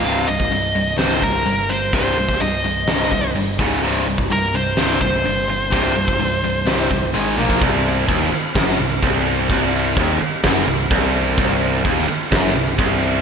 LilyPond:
<<
  \new Staff \with { instrumentName = "Lead electric guitar" } { \time 4/4 \key c \minor \tempo 4 = 127 f''8 ees''4. c''8 bes'4 c''8 | c''4 ees''2 r4 | r4 bes'8 c''4 c''4.~ | c''2. r4 |
r1 | r1 | r1 | }
  \new Staff \with { instrumentName = "Distorted electric guitar" } { \clef bass \time 4/4 \key c \minor <c, g, c>8 <c, g,>8 <c, g,>8 <c, g,>8 <c, g, c>8 <c, g,>8 <c, g,>8 <c, g,>8 | <c, g, c>8 <c, g,>8 <c, g,>8 <c, g,>8 <c, g, c>8 <c, g,>8 <c, g,>8 <des, aes, des>8 | <c, g, c>8 <c, g,>8 <c, g,>8 <c, g,>8 <c, g, c>8 <c, g,>8 <c, g,>8 <c, g,>8 | <c, g, c>8 <c, g,>8 <c, g,>8 <c, g,>8 <c, g, c>8 <c, g,>8 <aes, ees aes>8 <bes, f bes>8 |
c,4 ees,8 r8 fis,8 c,8 c,4 | c,4 ees,8 r8 fis,8 c,8 c,4 | c,4 ees,8 r8 fis,8 c,8 c,4 | }
  \new Staff \with { instrumentName = "Overdriven electric guitar" } { \clef bass \time 4/4 \key c \minor <c, g, c>8 <c, g,>8 <c, g,>8 <c, g,>8 <c, g, c>8 <c, g,>8 <c, g,>8 <c, g,>8 | <c, g, c>8 <c, g,>8 <c, g,>8 <c, g,>8 <c, g, c>8 <c, g,>8 <c, g,>8 <des, aes, des>8 | <c, g, c>8 <c, g,>8 <c, g,>8 <c, g,>8 <c, g, c>8 <c, g,>8 <c, g,>8 <c, g,>8 | <c, g, c>8 <c, g,>8 <c, g,>8 <c, g,>8 <c, g, c>8 <c, g,>8 <aes, ees aes>8 <bes, f bes>8 |
c,4 ees,8 r8 fis,8 c,8 c,4 | c,4 ees,8 r8 fis,8 c,8 c,4 | c,4 ees,8 r8 fis,8 c,8 c,4 | }
  \new Staff \with { instrumentName = "Picked electric bass" } { \clef bass \time 4/4 \key c \minor c,,8 c,,8 c,,4 c,,8 c,,8 g,,4 | c,,8 c,,8 c,,4 c,,8 c,,8 g,,8 des,,8 | c,,8 c,,8 c,,4 c,,8 c,,8 g,,4 | c,,8 c,,8 c,,4 c,,8 c,,8 aes,,8 bes,,8 |
c,,4 ees,,8 r8 fis,,8 c,,8 c,,4 | c,,4 ees,,8 r8 fis,,8 c,,8 c,,4 | c,,4 ees,,8 r8 fis,,8 c,,8 c,,4 | }
  \new DrumStaff \with { instrumentName = "Drums" } \drummode { \time 4/4 hho8 hho16 bd16 hho8 hho8 <hho sn>8 <hho bd>8 hho8 hho8 | <hho bd>8 hho16 <bd sn>16 hho8 hho8 <hho sn>8 <hho bd>8 hho8 <hho bd>8 | hho8 hho16 bd16 hho8 hho8 <hho sn>8 <hho bd>8 hho8 hho8 | <hho bd>8 hho16 bd16 hho8 hho8 <hho sn>8 <hho bd>8 hho8 tommh16 bd16 |
<cymc bd>4 <cymc bd>16 sn8. <cymc bd sn>4 <cymc bd>4 | <cymc bd>4 <cymc bd>4 <cymc bd sn>4 <cymc bd>4 | <cymc bd>4 <cymc bd>16 sn8. <cymc bd sn>4 <cymc bd>4 | }
>>